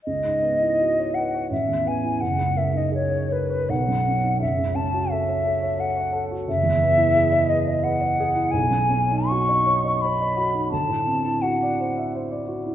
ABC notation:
X:1
M:3/4
L:1/16
Q:1/4=86
K:F#mix
V:1 name="Flute"
d6 f2 e2 g2 | f2 e d c2 B2 f4 | e2 =a2 e4 f3 z | e6 d2 f4 |
g4 c'4 b4 | =a4 f4 z4 |]
V:2 name="Grand piano"
C,, G,, B, E F c B c =A,,, E,, B, E | F,,, C,, A, D G c A c B,,, F,, C D | F,,, C,, C F =A c A c A c A F | F,,, E,, B, E G d B d B d G E |
B,,, F,, C D F d c d c d F D | =D,, =A,, =C E F =d =c e c d F E |]